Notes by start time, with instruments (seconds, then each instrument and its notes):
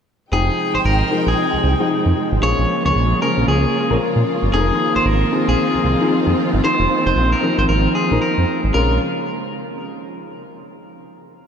0.31 analog synth bass F1, string section C3 F3 G#3 D#4 G5, grand piano F3 G#3 D#4 G5, clean electric guitar G#4
0.74 analog synth bass G#1, clean electric guitar C5
0.85 analog synth bass G#1, clean electric guitar A#4
1.10 grand piano F3 G#3 D#4 A#4
1.27 analog synth bass A#1, clean electric guitar G#4
1.53 analog synth bass C2
1.64 analog synth bass C2
1.79 grand piano F3 G#3 D#4 G5
2.06 analog synth bass F2
2.32 analog synth bass G#1
2.42 analog synth bass A#1, string section C#3 A#3 F4, grand piano F3 A#3 C#4 G#4, clean electric guitar C#5
2.58 analog synth bass A#1
2.85 analog synth bass C#2, clean electric guitar C#5
2.96 analog synth bass A#1
3.21 grand piano F3 A#3 C#4 G#4, clean electric guitar A#4
3.38 analog synth bass A#1
3.48 analog synth bass C#2, clean electric guitar G#4
3.90 analog synth bass A#1, grand piano F3 A#3 C#4 A#4
4.16 analog synth bass A#2
4.43 analog synth bass G1
4.52 analog synth bass F1, string section D#3 F3 C4, grand piano F3 C4 D#4 A4, clean electric guitar G#4
4.60 grand piano A#4
4.95 analog synth bass G#1, clean electric guitar C5
5.05 analog synth bass G#1, clean electric guitar A#4
5.32 grand piano F3 C4 D#4 G#4
5.48 analog synth bass A#1, clean electric guitar G#4
5.74 analog synth bass C2
5.84 analog synth bass C2
6.00 grand piano F3 C4 D#4 G#4
6.27 analog synth bass F2
6.53 analog synth bass G1
6.63 grand piano F3 C4 D#4 C5, clean electric guitar C5
6.80 analog synth bass F1
7.06 analog synth bass F1, clean electric guitar C5
7.16 analog synth bass A#1
7.32 clean electric guitar A#4
7.42 grand piano F3 C4 D#4 A#4
7.58 analog synth bass G#1, clean electric guitar C5
7.69 analog synth bass G#1, clean electric guitar A#4
7.95 clean electric guitar G#4
8.11 analog synth bass A#1, grand piano F3 C4 D#4 A#4
8.22 clean electric guitar A#4
8.38 analog synth bass F2
8.64 analog synth bass G#1
8.74 analog synth bass A#1, string section C#3 F3 G#3 A#3 F4, grand piano G#3 C#4 F4 A#4, clean electric guitar A#4